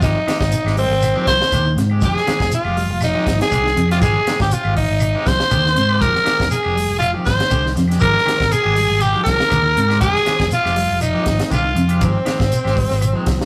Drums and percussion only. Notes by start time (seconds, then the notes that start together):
0.02 kick, snare, closed hi-hat, shekere
0.27 snare, closed hi-hat, claves, shekere
0.41 kick, snare
0.52 closed hi-hat, shekere
0.66 snare, claves
0.76 open hi-hat, shekere
1.01 snare, closed hi-hat, claves, shekere
1.26 kick, snare, closed hi-hat, shekere
1.42 snare
1.52 kick, closed hi-hat, claves, shekere
1.77 snare, closed hi-hat, shekere
1.90 claves
2.01 kick, snare, closed hi-hat, shekere
2.17 snare
2.26 snare, closed hi-hat, claves, shekere
2.40 kick, snare
2.52 closed hi-hat, shekere
2.65 claves
2.77 open hi-hat, shekere
3.00 snare, closed hi-hat, claves, shekere
3.26 kick, snare, closed hi-hat, shekere
3.41 snare, closed hi-hat
3.51 kick, closed hi-hat, claves, shekere
3.67 snare
3.77 closed hi-hat, shekere
3.89 snare, closed hi-hat, claves
4.02 kick, snare, closed hi-hat, shekere
4.26 snare, closed hi-hat, claves, shekere
4.40 kick, snare
4.51 closed hi-hat, shekere
4.64 claves
4.76 kick, open hi-hat, shekere
4.99 closed hi-hat, claves, shekere
5.25 kick, snare, closed hi-hat, shekere
5.40 snare
5.51 kick, closed hi-hat, claves, shekere
5.66 snare
5.76 closed hi-hat, shekere
5.89 claves
6.02 kick, closed hi-hat, shekere
6.16 snare
6.25 snare, closed hi-hat, claves, shekere
6.40 kick, snare
6.51 closed hi-hat, shekere
6.63 claves
6.76 open hi-hat, shekere
7.00 closed hi-hat, claves, shekere
7.25 kick, snare, closed hi-hat, shekere
7.40 snare, closed hi-hat
7.49 kick, closed hi-hat, claves, shekere
7.66 snare
7.75 snare, closed hi-hat, shekere
7.88 closed hi-hat, claves
7.92 snare
8.00 kick, closed hi-hat, shekere
8.18 snare
8.25 snare, closed hi-hat, claves, shekere
8.40 kick, snare
8.52 closed hi-hat, shekere
8.64 claves
8.76 open hi-hat, shekere
9.00 closed hi-hat, claves, shekere
9.26 kick, snare, closed hi-hat, shekere
9.40 snare
9.50 kick, closed hi-hat, claves, shekere
9.77 closed hi-hat, shekere
9.90 snare, claves
10.01 kick, closed hi-hat, shekere
10.16 snare
10.26 snare, closed hi-hat, claves, shekere
10.40 kick, snare
10.51 closed hi-hat, shekere
10.65 snare, claves
10.76 open hi-hat, shekere
11.01 closed hi-hat, claves, shekere
11.26 kick, snare, closed hi-hat, shekere
11.39 snare, closed hi-hat
11.52 kick, closed hi-hat, claves, shekere
11.76 closed hi-hat, shekere
11.89 closed hi-hat, claves
12.01 kick, closed hi-hat, shekere
12.26 snare, closed hi-hat, claves, shekere
12.40 kick, snare
12.52 closed hi-hat, shekere
12.65 snare, claves
12.77 kick, open hi-hat, shekere
12.91 snare
13.01 closed hi-hat, claves, shekere
13.26 kick, snare, closed hi-hat, shekere
13.42 snare